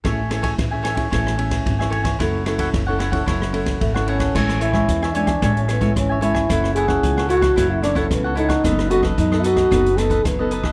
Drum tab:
CC |----------------|----------------|x---------------|----------------|
RD |x-xxx-xxx-xxx-xx|x-xxx-xxx-xxx-xx|----------------|----------------|
HH |----------------|----------------|-xx-x-xxxxxxx-x-|x-x-x-xxx-xxx-xx|
SD |r-r-r-r-rr-r-r-r|r-r-r-r-rr-r-r-r|rr-r-r-rr-r-r--r|rr-r-r-rr-r-r--r|
BD |o--oo--oo--oo--o|o--oo--oo--oo--o|o--oo--oo--oo--o|o--oo--oo--oo--o|

CC |----------------|
RD |----------------|
HH |xxx-x-xxxxxxx-x-|
SD |rr-r-r-rr-r-r--r|
BD |o--oo--oo--oo--o|